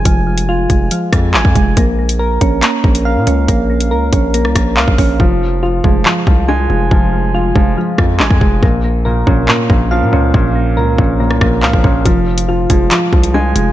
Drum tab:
HH |x--x--x-x-x---x-|x--x--x-x--x--x-|x--x--x-x-x---o-|----------------|
CP |------------x---|--------x-------|------------x---|--------x-------|
SD |----------r-----|----------------|---------rr-----|----------------|
BD |o-----o---o--oo-|o-----o---o-----|o-----o---o--oo-|o-----o---o-----|

HH |----------------|----------------|----------------|x--x--x-x--x--x-|
CP |------------x---|--------x-------|------------x---|--------x-------|
SD |----------r-----|----------------|---------rr-----|----------------|
BD |o-----o---o--oo-|o-----o---o-----|o-----o---o--oo-|o-----o---o-----|